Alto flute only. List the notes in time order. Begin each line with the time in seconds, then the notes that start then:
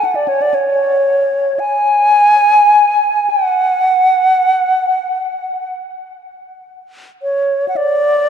0.05 F#5
0.11 D5 F#5
0.28 C#5
0.42 D5
0.54 C#5
1.59 G#5
3.30 F#5
7.23 C#5
7.69 F#5
7.76 D5